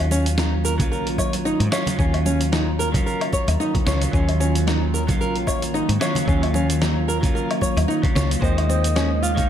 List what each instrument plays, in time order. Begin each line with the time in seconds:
Already playing: fretless electric bass D#2, ambient pad D#3 F#3 A#3 F4, clean electric guitar F#3 C#4 F4
0.11 nylon-string guitar C#4, muted conga, shaker
0.26 closed hi-hat, shaker
0.38 nylon-string guitar D#4, snare, shaker
0.65 nylon-string guitar A#4, shaker
0.78 clean electric guitar F#3 C#4, kick, closed hi-hat, muted conga, high conga, low conga, shaker
0.82 clean electric guitar F4
0.92 fretless electric bass A#1, nylon-string guitar A#4, shaker
1.07 closed hi-hat
1.18 nylon-string guitar C#5, kick, high conga, low woodblock, shaker
1.33 closed hi-hat, muted conga, shaker
1.45 nylon-string guitar D#4, shaker
1.60 fretless electric bass G#2, closed hi-hat
1.71 clean electric guitar F#3 C#4 F4, nylon-string guitar C#5, snare, low woodblock, shaker
1.87 closed hi-hat, muted conga, high conga, low conga, shaker
1.97 fretless electric bass D#2, clean electric guitar F#3 C#4 F4, nylon-string guitar C#4, kick, shaker
2.14 closed hi-hat, low woodblock
2.26 nylon-string guitar C#4, muted conga, high conga, shaker
2.41 closed hi-hat, shaker
2.52 nylon-string guitar D#4, snare, shaker
2.79 nylon-string guitar A#4, shaker
2.92 clean electric guitar F#3 C#4, kick, closed hi-hat, muted conga, high conga, low conga, shaker
2.96 clean electric guitar F4
3.06 nylon-string guitar A#4, shaker
3.21 closed hi-hat, low woodblock
3.33 nylon-string guitar C#5, kick, muted conga, high conga, shaker
3.47 fretless electric bass D#2, closed hi-hat, high conga, low woodblock, shaker
3.60 nylon-string guitar D#4, shaker
3.75 kick, closed hi-hat, high conga, low conga
3.85 fretless electric bass C#2, clean electric guitar F#3 C#4 F4, nylon-string guitar C#5, snare, low conga, shaker
4.02 closed hi-hat, shaker
4.11 fretless electric bass D#2, clean electric guitar F#3 C#4, nylon-string guitar C#4, kick, shaker
4.15 clean electric guitar F4
4.29 closed hi-hat, low woodblock
4.40 nylon-string guitar C#4, muted conga, shaker
4.55 closed hi-hat, shaker
4.67 nylon-string guitar D#4, snare, shaker
4.94 nylon-string guitar A#4, shaker
5.07 clean electric guitar F#3 C#4, kick, closed hi-hat, muted conga, high conga, low conga, shaker
5.11 clean electric guitar F4
5.20 fretless electric bass A#1, nylon-string guitar A#4, shaker
5.36 closed hi-hat
5.47 nylon-string guitar C#5, kick, high conga, low woodblock, shaker
5.62 closed hi-hat, muted conga, shaker
5.74 nylon-string guitar D#4, shaker
5.89 fretless electric bass G#2, closed hi-hat
6.00 clean electric guitar F#3 C#4 F4, nylon-string guitar C#5, snare, low woodblock, shaker
6.15 closed hi-hat, muted conga, high conga, low conga, shaker
6.25 fretless electric bass D#2, clean electric guitar F#3 C#4 F4, nylon-string guitar C#4, kick, shaker
6.43 closed hi-hat, low woodblock
6.54 nylon-string guitar C#4, muted conga, high conga, shaker
6.70 closed hi-hat, shaker
6.81 nylon-string guitar D#4, snare, shaker
7.08 nylon-string guitar A#4, shaker
7.21 clean electric guitar F#3 C#4 F4, kick, closed hi-hat, muted conga, high conga, low conga, shaker
7.35 nylon-string guitar A#4, shaker
7.51 closed hi-hat, low woodblock
7.61 nylon-string guitar C#5, kick, muted conga, high conga, shaker
7.77 fretless electric bass D#2, closed hi-hat, high conga, low woodblock, shaker
7.88 nylon-string guitar D#4, shaker
8.02 clean electric guitar F#3 C#4 F4, kick, closed hi-hat, high conga, low conga
8.15 fretless electric bass C#2, nylon-string guitar C#5, snare, low conga, shaker
8.31 closed hi-hat, shaker
8.40 fretless electric bass D#2, ambient pad C#3 G#3, clean electric guitar G#3 D#4 C5, nylon-string guitar C4, singing bowl A#4, soft synth lead D#5, kick
8.44 shaker
8.58 closed hi-hat, low woodblock
8.69 nylon-string guitar C4, muted conga, shaker
8.84 closed hi-hat, shaker
8.96 nylon-string guitar C#4, snare, shaker
9.22 nylon-string guitar F4, soft synth lead F5, shaker
9.35 clean electric guitar G#3 C#5, kick, closed hi-hat, muted conga, high conga, low conga, shaker
9.39 clean electric guitar D#4